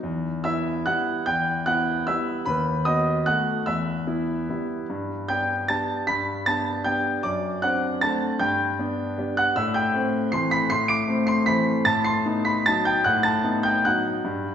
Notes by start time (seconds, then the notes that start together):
0.03 E2
0.44 B3 E4 E5 E6
0.86 G3 B3 E4 F#5 F#6
1.26 E2 G5 G6
1.66 B3 E4 F#5 F#6
2.07 G3 B3 E4 E5 E6
2.46 D#2 B4 B5
2.85 B3 F#4 D#5 D#6
3.26 A3 B3 F#4 F#5 F#6
3.66 E2 E5 E6
4.07 B3 E4
4.49 G3 B3 E4
4.90 G2
5.28 B3 D4 G5 G6
5.68 G3 B3 D4 A5 A6
6.07 G2 B5 B6
6.46 B3 D4 A5 A6
6.84 G3 B3 D4 G5 G6
7.23 F#2 D5 D6
7.62 C4 D4 F#5 F#6
8.01 A3 C4 D4 A5 A6
8.39 G2 G5 G6
8.79 B3 D4
9.18 G3 B3 D4
9.37 F#5 F#6
9.56 A2 E5 E6
9.74 G5 G6
9.94 A3 C4
10.32 E3 A3 C4 C6 C7
10.51 B5 B6
10.70 A2 C6 C7
10.88 D6 D7
11.08 A3 C4
11.27 C6 C7
11.46 E3 A3 C4 B5 B6
11.85 A2 A5 A6
12.04 C6 C7
12.25 B3 D#4
12.45 B5 B6
12.66 F#3 B3 D#4 A5 A6
12.85 G5 G6
13.04 A2 F#5 F#6
13.23 A5 A6
13.44 B3 D#4
13.63 G5 G6
13.85 F#3 B3 D#4 F#5 F#6
14.24 G2